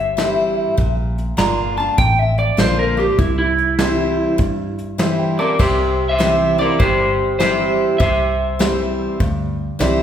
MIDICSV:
0, 0, Header, 1, 6, 480
1, 0, Start_track
1, 0, Tempo, 601202
1, 624, Time_signature, 4, 2, 24, 8
1, 8006, End_track
2, 0, Start_track
2, 0, Title_t, "Clean electric guitar"
2, 0, Program_c, 0, 27
2, 0, Note_on_c, 0, 76, 102
2, 760, Note_off_c, 0, 76, 0
2, 1103, Note_on_c, 0, 82, 105
2, 1414, Note_off_c, 0, 82, 0
2, 1418, Note_on_c, 0, 81, 81
2, 1576, Note_off_c, 0, 81, 0
2, 1583, Note_on_c, 0, 79, 112
2, 1748, Note_off_c, 0, 79, 0
2, 1748, Note_on_c, 0, 76, 100
2, 1902, Note_off_c, 0, 76, 0
2, 1905, Note_on_c, 0, 74, 84
2, 2060, Note_off_c, 0, 74, 0
2, 2069, Note_on_c, 0, 72, 91
2, 2222, Note_off_c, 0, 72, 0
2, 2228, Note_on_c, 0, 70, 84
2, 2382, Note_off_c, 0, 70, 0
2, 2384, Note_on_c, 0, 67, 91
2, 2544, Note_off_c, 0, 67, 0
2, 2544, Note_on_c, 0, 64, 90
2, 2693, Note_off_c, 0, 64, 0
2, 2703, Note_on_c, 0, 64, 86
2, 4113, Note_off_c, 0, 64, 0
2, 4303, Note_on_c, 0, 74, 87
2, 4307, Note_on_c, 0, 70, 66
2, 4457, Note_off_c, 0, 70, 0
2, 4468, Note_on_c, 0, 72, 85
2, 4471, Note_off_c, 0, 74, 0
2, 4477, Note_on_c, 0, 67, 70
2, 4842, Note_off_c, 0, 67, 0
2, 4864, Note_on_c, 0, 76, 98
2, 4868, Note_off_c, 0, 72, 0
2, 4878, Note_on_c, 0, 72, 77
2, 5241, Note_off_c, 0, 72, 0
2, 5259, Note_off_c, 0, 76, 0
2, 5262, Note_on_c, 0, 74, 95
2, 5280, Note_on_c, 0, 70, 72
2, 5419, Note_off_c, 0, 70, 0
2, 5422, Note_on_c, 0, 72, 109
2, 5431, Note_off_c, 0, 74, 0
2, 5441, Note_on_c, 0, 67, 83
2, 5881, Note_off_c, 0, 67, 0
2, 5889, Note_off_c, 0, 72, 0
2, 5899, Note_on_c, 0, 72, 92
2, 5917, Note_on_c, 0, 67, 70
2, 6350, Note_off_c, 0, 72, 0
2, 6359, Note_off_c, 0, 67, 0
2, 6374, Note_on_c, 0, 76, 81
2, 6392, Note_on_c, 0, 72, 73
2, 7308, Note_off_c, 0, 76, 0
2, 7316, Note_off_c, 0, 72, 0
2, 8006, End_track
3, 0, Start_track
3, 0, Title_t, "Upright piano"
3, 0, Program_c, 1, 0
3, 141, Note_on_c, 1, 64, 67
3, 144, Note_on_c, 1, 67, 69
3, 145, Note_on_c, 1, 72, 80
3, 594, Note_off_c, 1, 64, 0
3, 596, Note_off_c, 1, 67, 0
3, 597, Note_off_c, 1, 72, 0
3, 1101, Note_on_c, 1, 65, 77
3, 1101, Note_on_c, 1, 74, 87
3, 1105, Note_on_c, 1, 70, 71
3, 1555, Note_off_c, 1, 65, 0
3, 1555, Note_off_c, 1, 74, 0
3, 1557, Note_off_c, 1, 70, 0
3, 2063, Note_on_c, 1, 65, 71
3, 2063, Note_on_c, 1, 70, 62
3, 2066, Note_on_c, 1, 74, 85
3, 2516, Note_off_c, 1, 65, 0
3, 2516, Note_off_c, 1, 70, 0
3, 2518, Note_off_c, 1, 74, 0
3, 3020, Note_on_c, 1, 64, 78
3, 3020, Note_on_c, 1, 67, 70
3, 3023, Note_on_c, 1, 72, 92
3, 3475, Note_off_c, 1, 64, 0
3, 3475, Note_off_c, 1, 67, 0
3, 3477, Note_off_c, 1, 72, 0
3, 3983, Note_on_c, 1, 64, 88
3, 3984, Note_on_c, 1, 76, 66
3, 3986, Note_on_c, 1, 67, 82
3, 3988, Note_on_c, 1, 72, 98
3, 4132, Note_off_c, 1, 76, 0
3, 4143, Note_on_c, 1, 79, 65
3, 4290, Note_off_c, 1, 79, 0
3, 4302, Note_on_c, 1, 81, 72
3, 4437, Note_off_c, 1, 64, 0
3, 4438, Note_off_c, 1, 67, 0
3, 4439, Note_off_c, 1, 72, 0
3, 4455, Note_off_c, 1, 81, 0
3, 4950, Note_on_c, 1, 60, 75
3, 4950, Note_on_c, 1, 72, 88
3, 4951, Note_on_c, 1, 64, 71
3, 4952, Note_on_c, 1, 67, 72
3, 5400, Note_off_c, 1, 60, 0
3, 5400, Note_off_c, 1, 72, 0
3, 5401, Note_off_c, 1, 64, 0
3, 5401, Note_off_c, 1, 67, 0
3, 5902, Note_on_c, 1, 64, 66
3, 5903, Note_on_c, 1, 60, 74
3, 5905, Note_on_c, 1, 72, 79
3, 5907, Note_on_c, 1, 67, 68
3, 6356, Note_off_c, 1, 60, 0
3, 6356, Note_off_c, 1, 64, 0
3, 6358, Note_off_c, 1, 67, 0
3, 6358, Note_off_c, 1, 72, 0
3, 6869, Note_on_c, 1, 64, 67
3, 6870, Note_on_c, 1, 72, 88
3, 6871, Note_on_c, 1, 60, 81
3, 6871, Note_on_c, 1, 67, 77
3, 7319, Note_off_c, 1, 64, 0
3, 7320, Note_off_c, 1, 60, 0
3, 7320, Note_off_c, 1, 67, 0
3, 7320, Note_off_c, 1, 72, 0
3, 7823, Note_on_c, 1, 60, 97
3, 7824, Note_on_c, 1, 64, 78
3, 7826, Note_on_c, 1, 67, 84
3, 7826, Note_on_c, 1, 74, 98
3, 8006, Note_off_c, 1, 60, 0
3, 8006, Note_off_c, 1, 64, 0
3, 8006, Note_off_c, 1, 67, 0
3, 8006, Note_off_c, 1, 74, 0
3, 8006, End_track
4, 0, Start_track
4, 0, Title_t, "Steel-string acoustic guitar"
4, 0, Program_c, 2, 25
4, 0, Note_on_c, 2, 43, 89
4, 135, Note_on_c, 2, 52, 85
4, 143, Note_on_c, 2, 55, 87
4, 149, Note_on_c, 2, 60, 92
4, 155, Note_on_c, 2, 64, 106
4, 587, Note_off_c, 2, 43, 0
4, 603, Note_off_c, 2, 52, 0
4, 607, Note_off_c, 2, 55, 0
4, 610, Note_off_c, 2, 60, 0
4, 613, Note_off_c, 2, 64, 0
4, 619, Note_on_c, 2, 46, 83
4, 1094, Note_on_c, 2, 50, 94
4, 1103, Note_on_c, 2, 58, 100
4, 1109, Note_on_c, 2, 62, 97
4, 1113, Note_on_c, 2, 65, 96
4, 1403, Note_off_c, 2, 50, 0
4, 1407, Note_off_c, 2, 58, 0
4, 1407, Note_off_c, 2, 65, 0
4, 1410, Note_off_c, 2, 62, 0
4, 1416, Note_on_c, 2, 65, 59
4, 1435, Note_on_c, 2, 62, 55
4, 1549, Note_off_c, 2, 46, 0
4, 1576, Note_off_c, 2, 65, 0
4, 1581, Note_on_c, 2, 41, 103
4, 1585, Note_off_c, 2, 62, 0
4, 2054, Note_on_c, 2, 50, 88
4, 2062, Note_on_c, 2, 58, 93
4, 2067, Note_on_c, 2, 62, 102
4, 2072, Note_on_c, 2, 65, 107
4, 2363, Note_off_c, 2, 50, 0
4, 2363, Note_off_c, 2, 65, 0
4, 2367, Note_off_c, 2, 58, 0
4, 2370, Note_off_c, 2, 62, 0
4, 2372, Note_on_c, 2, 65, 58
4, 2391, Note_on_c, 2, 62, 50
4, 2510, Note_off_c, 2, 41, 0
4, 2534, Note_off_c, 2, 65, 0
4, 2543, Note_off_c, 2, 62, 0
4, 2544, Note_on_c, 2, 48, 78
4, 3023, Note_on_c, 2, 52, 90
4, 3029, Note_on_c, 2, 55, 95
4, 3036, Note_on_c, 2, 60, 95
4, 3038, Note_on_c, 2, 64, 90
4, 3472, Note_off_c, 2, 48, 0
4, 3488, Note_off_c, 2, 52, 0
4, 3491, Note_off_c, 2, 55, 0
4, 3494, Note_off_c, 2, 60, 0
4, 3495, Note_off_c, 2, 64, 0
4, 3498, Note_on_c, 2, 43, 92
4, 3979, Note_on_c, 2, 52, 92
4, 3986, Note_on_c, 2, 55, 95
4, 3990, Note_on_c, 2, 60, 91
4, 3998, Note_on_c, 2, 64, 97
4, 4286, Note_off_c, 2, 52, 0
4, 4289, Note_off_c, 2, 55, 0
4, 4291, Note_off_c, 2, 60, 0
4, 4291, Note_off_c, 2, 64, 0
4, 4301, Note_on_c, 2, 64, 60
4, 4318, Note_on_c, 2, 60, 52
4, 4429, Note_off_c, 2, 43, 0
4, 4459, Note_off_c, 2, 64, 0
4, 4465, Note_on_c, 2, 48, 88
4, 4467, Note_off_c, 2, 60, 0
4, 4939, Note_on_c, 2, 52, 90
4, 4947, Note_on_c, 2, 55, 89
4, 4952, Note_on_c, 2, 60, 93
4, 4959, Note_on_c, 2, 64, 98
4, 5246, Note_off_c, 2, 52, 0
4, 5246, Note_off_c, 2, 64, 0
4, 5250, Note_off_c, 2, 55, 0
4, 5252, Note_off_c, 2, 60, 0
4, 5256, Note_on_c, 2, 64, 65
4, 5275, Note_on_c, 2, 60, 51
4, 5392, Note_off_c, 2, 48, 0
4, 5416, Note_off_c, 2, 64, 0
4, 5426, Note_off_c, 2, 60, 0
4, 5426, Note_on_c, 2, 43, 100
4, 5906, Note_on_c, 2, 52, 102
4, 5912, Note_on_c, 2, 55, 91
4, 5921, Note_on_c, 2, 60, 102
4, 5925, Note_on_c, 2, 64, 84
4, 6353, Note_off_c, 2, 43, 0
4, 6369, Note_off_c, 2, 52, 0
4, 6372, Note_off_c, 2, 55, 0
4, 6377, Note_off_c, 2, 60, 0
4, 6379, Note_off_c, 2, 64, 0
4, 6385, Note_on_c, 2, 48, 93
4, 6860, Note_on_c, 2, 52, 90
4, 6866, Note_on_c, 2, 55, 101
4, 6871, Note_on_c, 2, 60, 93
4, 6878, Note_on_c, 2, 64, 105
4, 7312, Note_off_c, 2, 48, 0
4, 7326, Note_off_c, 2, 52, 0
4, 7329, Note_off_c, 2, 55, 0
4, 7331, Note_off_c, 2, 60, 0
4, 7335, Note_off_c, 2, 64, 0
4, 7346, Note_on_c, 2, 43, 89
4, 7816, Note_on_c, 2, 52, 102
4, 7825, Note_on_c, 2, 55, 85
4, 7829, Note_on_c, 2, 60, 102
4, 7834, Note_on_c, 2, 64, 105
4, 8006, Note_off_c, 2, 43, 0
4, 8006, Note_off_c, 2, 52, 0
4, 8006, Note_off_c, 2, 55, 0
4, 8006, Note_off_c, 2, 60, 0
4, 8006, Note_off_c, 2, 64, 0
4, 8006, End_track
5, 0, Start_track
5, 0, Title_t, "Fingered electric bass"
5, 0, Program_c, 3, 33
5, 0, Note_on_c, 3, 31, 86
5, 525, Note_off_c, 3, 31, 0
5, 624, Note_on_c, 3, 34, 104
5, 1054, Note_off_c, 3, 34, 0
5, 1099, Note_on_c, 3, 31, 87
5, 1509, Note_off_c, 3, 31, 0
5, 1584, Note_on_c, 3, 33, 90
5, 1992, Note_off_c, 3, 33, 0
5, 2060, Note_on_c, 3, 34, 77
5, 2470, Note_off_c, 3, 34, 0
5, 2544, Note_on_c, 3, 36, 113
5, 3405, Note_off_c, 3, 36, 0
5, 3504, Note_on_c, 3, 43, 78
5, 4365, Note_off_c, 3, 43, 0
5, 4468, Note_on_c, 3, 36, 98
5, 5328, Note_off_c, 3, 36, 0
5, 5428, Note_on_c, 3, 31, 88
5, 6287, Note_off_c, 3, 31, 0
5, 6387, Note_on_c, 3, 36, 100
5, 7247, Note_off_c, 3, 36, 0
5, 7346, Note_on_c, 3, 38, 89
5, 7754, Note_off_c, 3, 38, 0
5, 7824, Note_on_c, 3, 36, 81
5, 8006, Note_off_c, 3, 36, 0
5, 8006, End_track
6, 0, Start_track
6, 0, Title_t, "Drums"
6, 146, Note_on_c, 9, 38, 117
6, 146, Note_on_c, 9, 42, 66
6, 226, Note_off_c, 9, 38, 0
6, 226, Note_off_c, 9, 42, 0
6, 624, Note_on_c, 9, 36, 105
6, 625, Note_on_c, 9, 42, 60
6, 704, Note_off_c, 9, 36, 0
6, 705, Note_off_c, 9, 42, 0
6, 943, Note_on_c, 9, 42, 67
6, 1023, Note_off_c, 9, 42, 0
6, 1104, Note_on_c, 9, 38, 110
6, 1104, Note_on_c, 9, 42, 64
6, 1184, Note_off_c, 9, 38, 0
6, 1184, Note_off_c, 9, 42, 0
6, 1581, Note_on_c, 9, 42, 68
6, 1583, Note_on_c, 9, 36, 125
6, 1661, Note_off_c, 9, 42, 0
6, 1663, Note_off_c, 9, 36, 0
6, 1898, Note_on_c, 9, 42, 65
6, 1978, Note_off_c, 9, 42, 0
6, 2063, Note_on_c, 9, 38, 106
6, 2063, Note_on_c, 9, 42, 60
6, 2143, Note_off_c, 9, 38, 0
6, 2143, Note_off_c, 9, 42, 0
6, 2542, Note_on_c, 9, 42, 55
6, 2545, Note_on_c, 9, 36, 117
6, 2622, Note_off_c, 9, 42, 0
6, 2624, Note_off_c, 9, 36, 0
6, 2860, Note_on_c, 9, 42, 59
6, 2939, Note_off_c, 9, 42, 0
6, 3023, Note_on_c, 9, 38, 116
6, 3023, Note_on_c, 9, 42, 56
6, 3103, Note_off_c, 9, 38, 0
6, 3103, Note_off_c, 9, 42, 0
6, 3503, Note_on_c, 9, 42, 70
6, 3506, Note_on_c, 9, 36, 124
6, 3582, Note_off_c, 9, 42, 0
6, 3586, Note_off_c, 9, 36, 0
6, 3820, Note_on_c, 9, 42, 59
6, 3900, Note_off_c, 9, 42, 0
6, 3986, Note_on_c, 9, 38, 122
6, 3986, Note_on_c, 9, 42, 67
6, 4065, Note_off_c, 9, 38, 0
6, 4065, Note_off_c, 9, 42, 0
6, 4468, Note_on_c, 9, 36, 119
6, 4468, Note_on_c, 9, 49, 110
6, 4548, Note_off_c, 9, 36, 0
6, 4548, Note_off_c, 9, 49, 0
6, 4951, Note_on_c, 9, 38, 112
6, 4951, Note_on_c, 9, 46, 51
6, 5031, Note_off_c, 9, 38, 0
6, 5031, Note_off_c, 9, 46, 0
6, 5429, Note_on_c, 9, 36, 127
6, 5432, Note_on_c, 9, 46, 62
6, 5509, Note_off_c, 9, 36, 0
6, 5511, Note_off_c, 9, 46, 0
6, 5910, Note_on_c, 9, 38, 119
6, 5910, Note_on_c, 9, 46, 53
6, 5990, Note_off_c, 9, 38, 0
6, 5990, Note_off_c, 9, 46, 0
6, 6389, Note_on_c, 9, 36, 121
6, 6390, Note_on_c, 9, 46, 48
6, 6469, Note_off_c, 9, 36, 0
6, 6470, Note_off_c, 9, 46, 0
6, 6869, Note_on_c, 9, 38, 115
6, 6949, Note_off_c, 9, 38, 0
6, 7345, Note_on_c, 9, 46, 60
6, 7348, Note_on_c, 9, 36, 127
6, 7424, Note_off_c, 9, 46, 0
6, 7428, Note_off_c, 9, 36, 0
6, 7827, Note_on_c, 9, 38, 124
6, 7827, Note_on_c, 9, 46, 54
6, 7907, Note_off_c, 9, 38, 0
6, 7907, Note_off_c, 9, 46, 0
6, 8006, End_track
0, 0, End_of_file